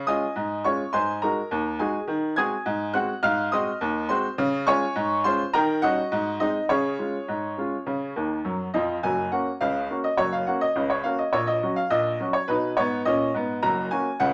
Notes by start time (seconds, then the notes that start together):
0.07 G#3 C#4 F4 D#5 G#5 D#6
0.36 G#2
0.64 G#3 C#4 F4 C#5 C#6
0.93 G#2 C5 G#5 C6
1.22 G#3 D#4 F#4 A#4 A#5
1.51 D#2
1.79 G#3 D#4 F#4 G#4 G#5
2.07 D#3
2.36 G#3 C4 F#4 G#5 D#6 G#6
2.66 G#2
2.94 G#3 C4 F#4 F#5 F#6
3.23 G#2 F5 F6
3.52 G#3 C4 F#4 D#5 C6 D#6
3.81 D#2
4.09 G#3 C4 F#4 C5 C6
4.38 C#3
4.67 G#3 C#4 F4 C#5 G#5 C#6
4.96 G#2
5.24 G#3 C#4 F4 C5 C6
5.53 D#3 A#4 G5 A#5
5.82 G3 C#4 D#4 F#4 D#5 F#5
6.12 G#2
6.40 G#3 C4 D#4 D#5
6.69 C#3 C#4 G#4 C#5
6.99 G#3 C#4 F4
7.28 G#2
7.58 G#3 C#4 F4
7.86 C#3
8.16 D#2 D#3
8.45 F#2 F#3
8.74 F2 F3 D#5
9.03 F#1 F#2 G#5
9.32 A#3 C#4 F#4 F#5
9.61 C#2 C#3 F5
9.90 A#3 C#4 F#4
10.04 D#5
10.17 F#1 F#2 C#5
10.33 F5
10.47 A#3 C#4 F#4 F#5
10.61 D#5
10.76 C#2 C#3
10.90 C#5
11.04 A#3 C#4 F#4 F5
11.18 D#5
11.33 A#1 A#2 C#5
11.47 D#5
11.62 F#3 C#4 F#4
11.76 F5
11.90 A#1 A#2 D#5
12.20 F#3 C#4 F#4
12.33 C#5
12.48 B2 D#4 B4
12.77 G#2 B3 C#5
13.05 A#2 C#4 D#5
13.34 G#2 B3
13.63 F#1 F#2 A#5
13.91 A#3 C#4 F#4 G#5
14.20 C#2 C#3 F#5